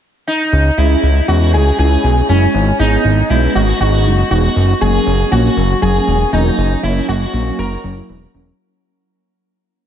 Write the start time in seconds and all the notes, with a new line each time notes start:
0.27 D#4
0.53 C#2
0.78 C#2 G#3 C#4 E4
0.90 G#3 C#4 E4
1.03 C#2
1.28 E2 G#3 C#4 E4 F#4
1.41 G#3 C#4 E4
1.53 C#2 G#4
1.79 C#2 G#3 C#4 E4 G#4
1.91 G#3 C#4 E4
2.04 B1
2.29 F#1 G#3 C#4 E4
2.54 G#1
2.79 G#1 G#3 B3 D#4
2.92 G#3 B3 D#4
3.05 G#1
3.30 B1 G#3 B3 D#4 E4
3.43 G#3 B3 C#4
3.55 G#1 F#4
3.80 G#1 G#3 B3 D#4 F#4
3.93 G#3 B3 D#4
4.06 F#1
4.31 E1 G#3 B3 D#4 F#4
4.56 F#1
4.81 F#1 F#3 A#3 C#4 G#4
4.94 F#3 A#3 C#4
5.06 F#1
5.32 A#1 F#3 A#3 C#4 F#4
5.44 F#3 A#3 C#4
5.57 F#1
5.82 F#1 F#3 A#3 C#4 G#4
5.95 F#3 A#3 C#4
6.07 E1
6.33 E1 F#3 A#3 C#4 D#4
6.58 F#1
6.83 F#1 F#3 A#3 C#4 E4
6.96 F#3 A#3 C#4
7.08 F#1 F#4
7.33 A#1 F#3 A#3 C#4
7.46 F#3 A#3 C#4
7.59 F#1 A#4
7.84 F#1 F#3 A#3 C#4
7.96 F#3 A#3 E4
8.09 E1
8.34 E1 F#3 A#3 C#4